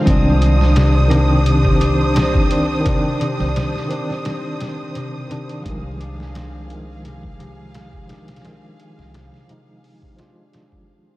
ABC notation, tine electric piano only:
X:1
M:4/4
L:1/16
Q:"Swing 16ths" 1/4=86
K:Cm
V:1 name="Tine electric piano" clef=bass
[E,CD]6 [E,CD]4 z4 [E,CD]2 | [E,CD]6 [E,CD]4 z4 [E,CD]2 | [E,F,A,]6 [E,F,A,]4 z4 [E,F,A,]2 | [E,F,A,]6 [F,A,E]4 [F,A,F] [F,A,D]4- [F,A,D] |]